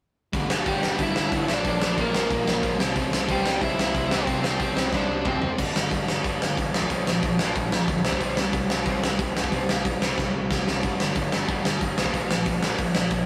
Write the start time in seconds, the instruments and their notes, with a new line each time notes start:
0.33 picked electric bass G1, distorted electric guitar G2 D3 G3, kick, open hi-hat
0.49 picked electric bass G1, snare
0.65 picked electric bass G1, distorted electric guitar G2 D3 G3, overdriven electric guitar G3 G4, kick, open hi-hat
0.82 picked electric bass G1, distorted electric guitar G2 D3 G3, snare
0.98 picked electric bass G1, distorted electric guitar G2 D3 G3, overdriven electric guitar E4, kick, open hi-hat
1.03 overdriven electric guitar E5
1.16 picked electric bass G1, snare
1.31 picked electric bass G1, distorted electric guitar G2 D3 G3, kick, open hi-hat
1.47 picked electric bass A#1, distorted electric guitar A#2 F3 A#3, snare
1.53 overdriven electric guitar D4 D5
1.64 picked electric bass A#1, distorted electric guitar A#2 F3 A#3, kick, open hi-hat
1.69 overdriven electric guitar D4 D5
1.82 snare
1.96 picked electric bass A#1, distorted electric guitar A#2 F3 A#3, kick, open hi-hat
2.00 overdriven electric guitar A#3 A#4
2.12 picked electric bass A#1, distorted electric guitar A#2 F3 A#3, snare
2.29 picked electric bass A#1, distorted electric guitar A#2 F3 A#3, kick, open hi-hat
2.48 picked electric bass A#1, snare
2.62 picked electric bass A#1, distorted electric guitar A#2 F3 A#3, kick, open hi-hat
2.78 picked electric bass C2, distorted electric guitar C3 G3 C4, snare
2.94 picked electric bass C2, distorted electric guitar C3 G3 C4, kick, open hi-hat
3.10 picked electric bass C2, snare
3.28 picked electric bass C2, distorted electric guitar C3 G3 C4, overdriven electric guitar G3 G4, kick, open hi-hat
3.44 picked electric bass C2, distorted electric guitar C3 G3 C4, snare
3.60 picked electric bass C2, distorted electric guitar C3 G3 C4, overdriven electric guitar E4 E5, kick, open hi-hat
3.77 picked electric bass C2, snare
3.94 picked electric bass C2, distorted electric guitar C3 G3 C4, kick, open hi-hat
4.10 distorted electric guitar C3 G3 C4, overdriven electric guitar C4 C5, snare
4.27 picked electric bass C2, distorted electric guitar C3 G3 C4, kick, open hi-hat
4.41 overdriven electric guitar C4 C5, snare
4.59 picked electric bass C2, distorted electric guitar C3 G3 C4, kick, open hi-hat
4.75 picked electric bass C2, distorted electric guitar C3 G3 C4, snare
4.92 picked electric bass C2, distorted electric guitar C3 G3 C4, overdriven electric guitar D4, kick, snare
4.97 overdriven electric guitar D5
5.10 picked electric bass C2
5.24 picked electric bass C2, distorted electric guitar C3 G3 C4, overdriven electric guitar C4 C5, kick, mid tom
5.41 picked electric bass F1, distorted electric guitar C3 G3 C4, floor tom
5.57 picked electric bass G1, distorted electric guitar G2 D3 G3, kick, crash
5.74 distorted electric guitar G2 D3, snare
5.90 picked electric bass G1, distorted electric guitar G2 D3, kick, open hi-hat
6.07 distorted electric guitar G2 D3, snare
6.23 picked electric bass G1, distorted electric guitar G2 D3 G3, kick, open hi-hat
6.40 picked electric bass G1, distorted electric guitar G2 D3, snare
6.57 picked electric bass A1, distorted electric guitar G2 D3, kick, open hi-hat
6.72 picked electric bass A#1, distorted electric guitar A#2 F3 A#3, snare
6.82 kick
6.90 picked electric bass A#1, distorted electric guitar A#2 F3 A#3, kick, open hi-hat
7.07 picked electric bass A#1, distorted electric guitar A#2 F3, snare
7.23 picked electric bass A#1, distorted electric guitar A#2 F3, kick, open hi-hat
7.39 distorted electric guitar A#2 F3 A#3, snare
7.55 picked electric bass A#1, distorted electric guitar A#2 F3, kick, open hi-hat
7.71 picked electric bass A#1, distorted electric guitar A#2 F3, snare
7.88 picked electric bass D2, distorted electric guitar A#2 F3, kick, open hi-hat
8.04 picked electric bass C2, distorted electric guitar C3 G3 C4, snare
8.13 kick
8.20 picked electric bass C2, distorted electric guitar C3 G3 C4, kick, open hi-hat
8.36 distorted electric guitar C3 G3, snare
8.52 picked electric bass C2, distorted electric guitar C3 G3, kick, open hi-hat
8.69 distorted electric guitar C3 G3, snare
8.85 picked electric bass C2, distorted electric guitar C3 G3 C4, kick, open hi-hat
9.03 picked electric bass C2, distorted electric guitar C3 G3, snare
9.18 picked electric bass C2, distorted electric guitar C3 G3, kick, open hi-hat
9.34 picked electric bass C2, distorted electric guitar C3 G3, snare
9.44 kick
9.52 picked electric bass C2, distorted electric guitar C3 G3 C4, kick, open hi-hat
9.69 picked electric bass C2, distorted electric guitar C3 G3, snare
9.85 picked electric bass C2, distorted electric guitar C3 G3, kick, open hi-hat
10.00 distorted electric guitar C3 G3 C4, snare
10.17 picked electric bass C2, distorted electric guitar C3 G3, kick, snare
10.34 picked electric bass C2, distorted electric guitar C3 G3
10.50 picked electric bass C2, distorted electric guitar C3 G3, kick, snare
10.67 picked electric bass C2, distorted electric guitar C3 G3, snare
10.83 picked electric bass G1, distorted electric guitar G2 D3 G3, kick, open hi-hat
11.00 distorted electric guitar G2 D3, snare
11.15 picked electric bass G1, distorted electric guitar G2 D3, kick, open hi-hat
11.32 distorted electric guitar G2 D3, snare
11.48 picked electric bass G1, distorted electric guitar G2 D3 G3, kick, open hi-hat
11.65 picked electric bass G1, distorted electric guitar G2 D3, snare
11.81 picked electric bass G1, distorted electric guitar G2 D3, kick, open hi-hat
11.98 picked electric bass A#1, distorted electric guitar A#2 F3 A#3, snare
12.06 kick
12.14 picked electric bass A#1, distorted electric guitar A#2 F3 A#3, kick, open hi-hat
12.30 picked electric bass A#1, distorted electric guitar A#2 F3, snare
12.46 picked electric bass A#1, distorted electric guitar A#2 F3, kick, open hi-hat
12.62 distorted electric guitar A#2 F3 A#3, snare
12.78 picked electric bass A#1, distorted electric guitar A#2 F3, kick, open hi-hat
12.95 picked electric bass A#1, distorted electric guitar A#2 F3, snare
13.10 picked electric bass B1, distorted electric guitar A#2 F3, kick, open hi-hat